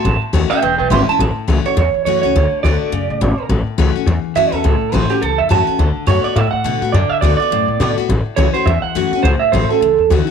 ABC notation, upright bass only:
X:1
M:4/4
L:1/8
Q:"Swing" 1/4=209
K:A
V:1 name="Upright bass" clef=bass
A,,, z ^D,, z E,,, B,,, G,,, z | A,,, z C,, z E,, z F,, C,, | D,, z D,, z F,, A,, G,,, z | A,,, z C,, z E,, z F,, E,, |
C,, z A,,, z C,, E,, F,, z | D,, z F,, z A,, z B,, A,, | F,, z D,, z F,, A,, B,, z | A,,, z C,, z E,, z F,, E,, |
C,, z A,,, z C,, E,, D,, z |]